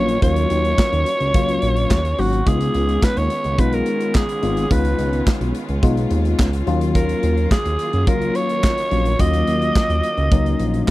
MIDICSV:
0, 0, Header, 1, 6, 480
1, 0, Start_track
1, 0, Key_signature, -6, "minor"
1, 0, Tempo, 560748
1, 191, Time_signature, 4, 2, 24, 8
1, 9336, End_track
2, 0, Start_track
2, 0, Title_t, "Alto saxophone"
2, 0, Program_c, 0, 65
2, 0, Note_on_c, 0, 73, 124
2, 190, Note_off_c, 0, 73, 0
2, 195, Note_on_c, 0, 73, 127
2, 1879, Note_on_c, 0, 66, 97
2, 1892, Note_off_c, 0, 73, 0
2, 2119, Note_on_c, 0, 68, 100
2, 2131, Note_off_c, 0, 66, 0
2, 2601, Note_on_c, 0, 71, 99
2, 2614, Note_off_c, 0, 68, 0
2, 2721, Note_on_c, 0, 73, 112
2, 2734, Note_off_c, 0, 71, 0
2, 3080, Note_on_c, 0, 71, 100
2, 3093, Note_off_c, 0, 73, 0
2, 3199, Note_on_c, 0, 70, 94
2, 3212, Note_off_c, 0, 71, 0
2, 3555, Note_on_c, 0, 68, 95
2, 3567, Note_off_c, 0, 70, 0
2, 4034, Note_on_c, 0, 71, 100
2, 4047, Note_off_c, 0, 68, 0
2, 4513, Note_off_c, 0, 71, 0
2, 5949, Note_on_c, 0, 70, 100
2, 6397, Note_off_c, 0, 70, 0
2, 6434, Note_on_c, 0, 68, 98
2, 6913, Note_on_c, 0, 70, 103
2, 6926, Note_off_c, 0, 68, 0
2, 7153, Note_on_c, 0, 73, 119
2, 7166, Note_off_c, 0, 70, 0
2, 7874, Note_on_c, 0, 75, 119
2, 7887, Note_off_c, 0, 73, 0
2, 9336, Note_off_c, 0, 75, 0
2, 9336, End_track
3, 0, Start_track
3, 0, Title_t, "Tine electric piano"
3, 0, Program_c, 1, 4
3, 0, Note_on_c, 1, 54, 75
3, 0, Note_on_c, 1, 58, 65
3, 0, Note_on_c, 1, 61, 70
3, 0, Note_on_c, 1, 65, 81
3, 134, Note_off_c, 1, 54, 0
3, 135, Note_off_c, 1, 58, 0
3, 137, Note_off_c, 1, 61, 0
3, 137, Note_off_c, 1, 65, 0
3, 188, Note_on_c, 1, 53, 63
3, 191, Note_on_c, 1, 58, 73
3, 193, Note_on_c, 1, 61, 71
3, 195, Note_on_c, 1, 65, 84
3, 245, Note_off_c, 1, 53, 0
3, 245, Note_on_c, 1, 54, 77
3, 929, Note_off_c, 1, 58, 0
3, 930, Note_off_c, 1, 61, 0
3, 931, Note_off_c, 1, 65, 0
3, 956, Note_off_c, 1, 54, 0
3, 1150, Note_on_c, 1, 54, 94
3, 1153, Note_on_c, 1, 58, 84
3, 1156, Note_on_c, 1, 61, 85
3, 1157, Note_on_c, 1, 65, 103
3, 1704, Note_off_c, 1, 54, 0
3, 1706, Note_off_c, 1, 58, 0
3, 1707, Note_off_c, 1, 61, 0
3, 1707, Note_off_c, 1, 65, 0
3, 1870, Note_on_c, 1, 54, 74
3, 1872, Note_on_c, 1, 58, 66
3, 1873, Note_on_c, 1, 61, 70
3, 1876, Note_on_c, 1, 66, 78
3, 2055, Note_off_c, 1, 54, 0
3, 2056, Note_off_c, 1, 58, 0
3, 2057, Note_off_c, 1, 61, 0
3, 2058, Note_off_c, 1, 66, 0
3, 2107, Note_on_c, 1, 56, 80
3, 2109, Note_on_c, 1, 59, 75
3, 2112, Note_on_c, 1, 63, 70
3, 2116, Note_on_c, 1, 65, 81
3, 2847, Note_off_c, 1, 56, 0
3, 2848, Note_off_c, 1, 59, 0
3, 2850, Note_off_c, 1, 63, 0
3, 2852, Note_off_c, 1, 65, 0
3, 3069, Note_on_c, 1, 56, 81
3, 3072, Note_on_c, 1, 59, 78
3, 3074, Note_on_c, 1, 63, 75
3, 3076, Note_on_c, 1, 65, 90
3, 3624, Note_off_c, 1, 56, 0
3, 3625, Note_off_c, 1, 59, 0
3, 3626, Note_off_c, 1, 63, 0
3, 3627, Note_off_c, 1, 65, 0
3, 3787, Note_on_c, 1, 56, 77
3, 3791, Note_on_c, 1, 59, 68
3, 3793, Note_on_c, 1, 63, 67
3, 3795, Note_on_c, 1, 65, 81
3, 3974, Note_off_c, 1, 56, 0
3, 3976, Note_off_c, 1, 59, 0
3, 3976, Note_off_c, 1, 63, 0
3, 3977, Note_off_c, 1, 65, 0
3, 4030, Note_on_c, 1, 56, 74
3, 4032, Note_on_c, 1, 59, 70
3, 4034, Note_on_c, 1, 63, 71
3, 4036, Note_on_c, 1, 65, 85
3, 4769, Note_off_c, 1, 56, 0
3, 4769, Note_off_c, 1, 59, 0
3, 4771, Note_off_c, 1, 63, 0
3, 4771, Note_off_c, 1, 65, 0
3, 4990, Note_on_c, 1, 56, 102
3, 4992, Note_on_c, 1, 59, 89
3, 4995, Note_on_c, 1, 63, 88
3, 4996, Note_on_c, 1, 65, 108
3, 5544, Note_off_c, 1, 56, 0
3, 5545, Note_off_c, 1, 59, 0
3, 5546, Note_off_c, 1, 63, 0
3, 5547, Note_off_c, 1, 65, 0
3, 5706, Note_on_c, 1, 54, 107
3, 5710, Note_on_c, 1, 58, 93
3, 5712, Note_on_c, 1, 61, 97
3, 5713, Note_on_c, 1, 65, 120
3, 6477, Note_off_c, 1, 54, 0
3, 6478, Note_off_c, 1, 58, 0
3, 6480, Note_off_c, 1, 61, 0
3, 6480, Note_off_c, 1, 65, 0
3, 6908, Note_on_c, 1, 54, 79
3, 6912, Note_on_c, 1, 58, 76
3, 6914, Note_on_c, 1, 61, 76
3, 6915, Note_on_c, 1, 65, 93
3, 7463, Note_off_c, 1, 54, 0
3, 7465, Note_off_c, 1, 58, 0
3, 7466, Note_off_c, 1, 61, 0
3, 7466, Note_off_c, 1, 65, 0
3, 7629, Note_on_c, 1, 54, 70
3, 7630, Note_on_c, 1, 58, 68
3, 7633, Note_on_c, 1, 61, 69
3, 7635, Note_on_c, 1, 65, 81
3, 7815, Note_off_c, 1, 54, 0
3, 7815, Note_off_c, 1, 58, 0
3, 7817, Note_off_c, 1, 61, 0
3, 7818, Note_off_c, 1, 65, 0
3, 7868, Note_on_c, 1, 54, 78
3, 7871, Note_on_c, 1, 58, 74
3, 7872, Note_on_c, 1, 61, 70
3, 7875, Note_on_c, 1, 65, 81
3, 8608, Note_off_c, 1, 54, 0
3, 8609, Note_off_c, 1, 58, 0
3, 8609, Note_off_c, 1, 61, 0
3, 8611, Note_off_c, 1, 65, 0
3, 8831, Note_on_c, 1, 54, 94
3, 8833, Note_on_c, 1, 58, 86
3, 8835, Note_on_c, 1, 61, 90
3, 8838, Note_on_c, 1, 63, 107
3, 9336, Note_off_c, 1, 54, 0
3, 9336, Note_off_c, 1, 58, 0
3, 9336, Note_off_c, 1, 61, 0
3, 9336, Note_off_c, 1, 63, 0
3, 9336, End_track
4, 0, Start_track
4, 0, Title_t, "String section"
4, 0, Program_c, 2, 48
4, 0, Note_on_c, 2, 51, 81
4, 0, Note_on_c, 2, 54, 81
4, 0, Note_on_c, 2, 58, 75
4, 0, Note_on_c, 2, 61, 75
4, 0, Note_on_c, 2, 65, 94
4, 2075, Note_off_c, 2, 54, 0
4, 2076, Note_off_c, 2, 58, 0
4, 2078, Note_off_c, 2, 51, 0
4, 2078, Note_off_c, 2, 65, 0
4, 2111, Note_on_c, 2, 59, 77
4, 2112, Note_on_c, 2, 56, 72
4, 2112, Note_on_c, 2, 65, 90
4, 2113, Note_on_c, 2, 51, 80
4, 5677, Note_off_c, 2, 56, 0
4, 5677, Note_off_c, 2, 59, 0
4, 5678, Note_off_c, 2, 51, 0
4, 5711, Note_on_c, 2, 51, 89
4, 5711, Note_on_c, 2, 58, 79
4, 5712, Note_on_c, 2, 54, 79
4, 9336, Note_off_c, 2, 51, 0
4, 9336, Note_off_c, 2, 54, 0
4, 9336, Note_off_c, 2, 58, 0
4, 9336, Note_off_c, 2, 61, 0
4, 9336, Note_off_c, 2, 65, 0
4, 9336, End_track
5, 0, Start_track
5, 0, Title_t, "Analog synth bass"
5, 0, Program_c, 3, 38
5, 0, Note_on_c, 3, 34, 93
5, 154, Note_off_c, 3, 34, 0
5, 191, Note_on_c, 3, 39, 107
5, 393, Note_off_c, 3, 39, 0
5, 433, Note_on_c, 3, 39, 97
5, 635, Note_off_c, 3, 39, 0
5, 794, Note_on_c, 3, 39, 99
5, 894, Note_off_c, 3, 39, 0
5, 1032, Note_on_c, 3, 37, 97
5, 1133, Note_off_c, 3, 37, 0
5, 1151, Note_on_c, 3, 37, 101
5, 1353, Note_off_c, 3, 37, 0
5, 1393, Note_on_c, 3, 34, 94
5, 1594, Note_off_c, 3, 34, 0
5, 1632, Note_on_c, 3, 39, 105
5, 1834, Note_off_c, 3, 39, 0
5, 1874, Note_on_c, 3, 32, 93
5, 2075, Note_off_c, 3, 32, 0
5, 2111, Note_on_c, 3, 37, 98
5, 2313, Note_off_c, 3, 37, 0
5, 2351, Note_on_c, 3, 37, 92
5, 2554, Note_off_c, 3, 37, 0
5, 2714, Note_on_c, 3, 39, 97
5, 2814, Note_off_c, 3, 39, 0
5, 2953, Note_on_c, 3, 37, 88
5, 3069, Note_on_c, 3, 35, 96
5, 3082, Note_off_c, 3, 37, 0
5, 3273, Note_off_c, 3, 35, 0
5, 3791, Note_on_c, 3, 32, 106
5, 3993, Note_off_c, 3, 32, 0
5, 4031, Note_on_c, 3, 37, 108
5, 4234, Note_off_c, 3, 37, 0
5, 4269, Note_on_c, 3, 37, 101
5, 4472, Note_off_c, 3, 37, 0
5, 4630, Note_on_c, 3, 35, 88
5, 4732, Note_off_c, 3, 35, 0
5, 4871, Note_on_c, 3, 37, 90
5, 4972, Note_off_c, 3, 37, 0
5, 4989, Note_on_c, 3, 35, 99
5, 5192, Note_off_c, 3, 35, 0
5, 5230, Note_on_c, 3, 39, 101
5, 5433, Note_off_c, 3, 39, 0
5, 5471, Note_on_c, 3, 37, 99
5, 5673, Note_off_c, 3, 37, 0
5, 5712, Note_on_c, 3, 39, 127
5, 6117, Note_off_c, 3, 39, 0
5, 6193, Note_on_c, 3, 39, 101
5, 6395, Note_off_c, 3, 39, 0
5, 6554, Note_on_c, 3, 39, 91
5, 6654, Note_off_c, 3, 39, 0
5, 6795, Note_on_c, 3, 42, 82
5, 6894, Note_off_c, 3, 42, 0
5, 6911, Note_on_c, 3, 37, 98
5, 7113, Note_off_c, 3, 37, 0
5, 7634, Note_on_c, 3, 34, 99
5, 7835, Note_off_c, 3, 34, 0
5, 7871, Note_on_c, 3, 39, 110
5, 8074, Note_off_c, 3, 39, 0
5, 8113, Note_on_c, 3, 39, 91
5, 8315, Note_off_c, 3, 39, 0
5, 8473, Note_on_c, 3, 39, 92
5, 8573, Note_off_c, 3, 39, 0
5, 8711, Note_on_c, 3, 37, 90
5, 8813, Note_off_c, 3, 37, 0
5, 8831, Note_on_c, 3, 37, 97
5, 9034, Note_off_c, 3, 37, 0
5, 9070, Note_on_c, 3, 34, 101
5, 9273, Note_off_c, 3, 34, 0
5, 9336, End_track
6, 0, Start_track
6, 0, Title_t, "Drums"
6, 73, Note_on_c, 9, 42, 62
6, 158, Note_off_c, 9, 42, 0
6, 190, Note_on_c, 9, 42, 98
6, 191, Note_on_c, 9, 36, 103
6, 276, Note_off_c, 9, 36, 0
6, 276, Note_off_c, 9, 42, 0
6, 310, Note_on_c, 9, 42, 67
6, 396, Note_off_c, 9, 42, 0
6, 429, Note_on_c, 9, 42, 83
6, 514, Note_off_c, 9, 42, 0
6, 554, Note_on_c, 9, 42, 49
6, 639, Note_off_c, 9, 42, 0
6, 670, Note_on_c, 9, 36, 112
6, 677, Note_on_c, 9, 39, 95
6, 678, Note_on_c, 9, 38, 121
6, 756, Note_off_c, 9, 36, 0
6, 763, Note_off_c, 9, 39, 0
6, 764, Note_off_c, 9, 38, 0
6, 794, Note_on_c, 9, 42, 60
6, 880, Note_off_c, 9, 42, 0
6, 910, Note_on_c, 9, 42, 94
6, 995, Note_off_c, 9, 42, 0
6, 1030, Note_on_c, 9, 42, 47
6, 1116, Note_off_c, 9, 42, 0
6, 1150, Note_on_c, 9, 36, 119
6, 1152, Note_on_c, 9, 42, 89
6, 1236, Note_off_c, 9, 36, 0
6, 1238, Note_off_c, 9, 42, 0
6, 1273, Note_on_c, 9, 42, 53
6, 1358, Note_off_c, 9, 42, 0
6, 1387, Note_on_c, 9, 42, 83
6, 1473, Note_off_c, 9, 42, 0
6, 1510, Note_on_c, 9, 42, 51
6, 1596, Note_off_c, 9, 42, 0
6, 1632, Note_on_c, 9, 36, 108
6, 1635, Note_on_c, 9, 38, 127
6, 1635, Note_on_c, 9, 39, 101
6, 1717, Note_off_c, 9, 36, 0
6, 1720, Note_off_c, 9, 39, 0
6, 1721, Note_off_c, 9, 38, 0
6, 1753, Note_on_c, 9, 42, 68
6, 1839, Note_off_c, 9, 42, 0
6, 1870, Note_on_c, 9, 46, 76
6, 1956, Note_off_c, 9, 46, 0
6, 1992, Note_on_c, 9, 42, 61
6, 2078, Note_off_c, 9, 42, 0
6, 2111, Note_on_c, 9, 36, 107
6, 2111, Note_on_c, 9, 42, 103
6, 2196, Note_off_c, 9, 42, 0
6, 2197, Note_off_c, 9, 36, 0
6, 2231, Note_on_c, 9, 42, 71
6, 2317, Note_off_c, 9, 42, 0
6, 2349, Note_on_c, 9, 42, 76
6, 2435, Note_off_c, 9, 42, 0
6, 2472, Note_on_c, 9, 42, 49
6, 2557, Note_off_c, 9, 42, 0
6, 2589, Note_on_c, 9, 36, 110
6, 2597, Note_on_c, 9, 39, 93
6, 2598, Note_on_c, 9, 38, 113
6, 2675, Note_off_c, 9, 36, 0
6, 2682, Note_off_c, 9, 39, 0
6, 2683, Note_off_c, 9, 38, 0
6, 2712, Note_on_c, 9, 42, 62
6, 2797, Note_off_c, 9, 42, 0
6, 2827, Note_on_c, 9, 42, 90
6, 2912, Note_off_c, 9, 42, 0
6, 2947, Note_on_c, 9, 42, 47
6, 3032, Note_off_c, 9, 42, 0
6, 3069, Note_on_c, 9, 36, 114
6, 3069, Note_on_c, 9, 42, 90
6, 3154, Note_off_c, 9, 36, 0
6, 3154, Note_off_c, 9, 42, 0
6, 3189, Note_on_c, 9, 42, 50
6, 3275, Note_off_c, 9, 42, 0
6, 3304, Note_on_c, 9, 42, 79
6, 3390, Note_off_c, 9, 42, 0
6, 3429, Note_on_c, 9, 42, 53
6, 3514, Note_off_c, 9, 42, 0
6, 3551, Note_on_c, 9, 36, 115
6, 3553, Note_on_c, 9, 39, 102
6, 3554, Note_on_c, 9, 38, 121
6, 3637, Note_off_c, 9, 36, 0
6, 3639, Note_off_c, 9, 38, 0
6, 3639, Note_off_c, 9, 39, 0
6, 3672, Note_on_c, 9, 42, 66
6, 3757, Note_off_c, 9, 42, 0
6, 3789, Note_on_c, 9, 42, 74
6, 3875, Note_off_c, 9, 42, 0
6, 3912, Note_on_c, 9, 42, 60
6, 3997, Note_off_c, 9, 42, 0
6, 4029, Note_on_c, 9, 42, 100
6, 4030, Note_on_c, 9, 36, 106
6, 4115, Note_off_c, 9, 42, 0
6, 4116, Note_off_c, 9, 36, 0
6, 4149, Note_on_c, 9, 42, 68
6, 4235, Note_off_c, 9, 42, 0
6, 4268, Note_on_c, 9, 42, 78
6, 4354, Note_off_c, 9, 42, 0
6, 4391, Note_on_c, 9, 42, 47
6, 4477, Note_off_c, 9, 42, 0
6, 4509, Note_on_c, 9, 36, 120
6, 4516, Note_on_c, 9, 39, 98
6, 4517, Note_on_c, 9, 38, 112
6, 4595, Note_off_c, 9, 36, 0
6, 4602, Note_off_c, 9, 38, 0
6, 4602, Note_off_c, 9, 39, 0
6, 4632, Note_on_c, 9, 42, 63
6, 4717, Note_off_c, 9, 42, 0
6, 4748, Note_on_c, 9, 42, 89
6, 4834, Note_off_c, 9, 42, 0
6, 4867, Note_on_c, 9, 42, 46
6, 4953, Note_off_c, 9, 42, 0
6, 4989, Note_on_c, 9, 36, 119
6, 4991, Note_on_c, 9, 42, 90
6, 5075, Note_off_c, 9, 36, 0
6, 5076, Note_off_c, 9, 42, 0
6, 5113, Note_on_c, 9, 42, 51
6, 5198, Note_off_c, 9, 42, 0
6, 5226, Note_on_c, 9, 42, 86
6, 5312, Note_off_c, 9, 42, 0
6, 5351, Note_on_c, 9, 42, 48
6, 5437, Note_off_c, 9, 42, 0
6, 5471, Note_on_c, 9, 36, 110
6, 5474, Note_on_c, 9, 39, 105
6, 5475, Note_on_c, 9, 38, 127
6, 5557, Note_off_c, 9, 36, 0
6, 5560, Note_off_c, 9, 39, 0
6, 5561, Note_off_c, 9, 38, 0
6, 5592, Note_on_c, 9, 42, 65
6, 5677, Note_off_c, 9, 42, 0
6, 5710, Note_on_c, 9, 42, 70
6, 5796, Note_off_c, 9, 42, 0
6, 5832, Note_on_c, 9, 42, 65
6, 5917, Note_off_c, 9, 42, 0
6, 5950, Note_on_c, 9, 36, 110
6, 5950, Note_on_c, 9, 42, 98
6, 6035, Note_off_c, 9, 42, 0
6, 6036, Note_off_c, 9, 36, 0
6, 6071, Note_on_c, 9, 42, 66
6, 6156, Note_off_c, 9, 42, 0
6, 6188, Note_on_c, 9, 42, 83
6, 6274, Note_off_c, 9, 42, 0
6, 6312, Note_on_c, 9, 42, 43
6, 6398, Note_off_c, 9, 42, 0
6, 6429, Note_on_c, 9, 36, 115
6, 6436, Note_on_c, 9, 39, 89
6, 6437, Note_on_c, 9, 38, 117
6, 6515, Note_off_c, 9, 36, 0
6, 6522, Note_off_c, 9, 38, 0
6, 6522, Note_off_c, 9, 39, 0
6, 6553, Note_on_c, 9, 42, 61
6, 6638, Note_off_c, 9, 42, 0
6, 6668, Note_on_c, 9, 42, 84
6, 6754, Note_off_c, 9, 42, 0
6, 6789, Note_on_c, 9, 42, 45
6, 6874, Note_off_c, 9, 42, 0
6, 6910, Note_on_c, 9, 36, 113
6, 6911, Note_on_c, 9, 42, 91
6, 6995, Note_off_c, 9, 36, 0
6, 6997, Note_off_c, 9, 42, 0
6, 7033, Note_on_c, 9, 42, 52
6, 7118, Note_off_c, 9, 42, 0
6, 7148, Note_on_c, 9, 42, 85
6, 7233, Note_off_c, 9, 42, 0
6, 7271, Note_on_c, 9, 42, 48
6, 7357, Note_off_c, 9, 42, 0
6, 7392, Note_on_c, 9, 36, 110
6, 7395, Note_on_c, 9, 39, 101
6, 7396, Note_on_c, 9, 38, 123
6, 7478, Note_off_c, 9, 36, 0
6, 7481, Note_off_c, 9, 39, 0
6, 7482, Note_off_c, 9, 38, 0
6, 7513, Note_on_c, 9, 42, 61
6, 7599, Note_off_c, 9, 42, 0
6, 7629, Note_on_c, 9, 42, 70
6, 7715, Note_off_c, 9, 42, 0
6, 7751, Note_on_c, 9, 42, 62
6, 7837, Note_off_c, 9, 42, 0
6, 7870, Note_on_c, 9, 42, 99
6, 7871, Note_on_c, 9, 36, 106
6, 7955, Note_off_c, 9, 42, 0
6, 7957, Note_off_c, 9, 36, 0
6, 7991, Note_on_c, 9, 42, 67
6, 8076, Note_off_c, 9, 42, 0
6, 8110, Note_on_c, 9, 42, 74
6, 8195, Note_off_c, 9, 42, 0
6, 8233, Note_on_c, 9, 42, 48
6, 8318, Note_off_c, 9, 42, 0
6, 8350, Note_on_c, 9, 36, 119
6, 8358, Note_on_c, 9, 39, 90
6, 8359, Note_on_c, 9, 38, 108
6, 8436, Note_off_c, 9, 36, 0
6, 8444, Note_off_c, 9, 38, 0
6, 8444, Note_off_c, 9, 39, 0
6, 8474, Note_on_c, 9, 42, 61
6, 8560, Note_off_c, 9, 42, 0
6, 8589, Note_on_c, 9, 42, 87
6, 8675, Note_off_c, 9, 42, 0
6, 8710, Note_on_c, 9, 42, 45
6, 8795, Note_off_c, 9, 42, 0
6, 8831, Note_on_c, 9, 36, 117
6, 8833, Note_on_c, 9, 42, 92
6, 8916, Note_off_c, 9, 36, 0
6, 8918, Note_off_c, 9, 42, 0
6, 8955, Note_on_c, 9, 42, 49
6, 9040, Note_off_c, 9, 42, 0
6, 9070, Note_on_c, 9, 42, 80
6, 9155, Note_off_c, 9, 42, 0
6, 9192, Note_on_c, 9, 42, 53
6, 9278, Note_off_c, 9, 42, 0
6, 9336, End_track
0, 0, End_of_file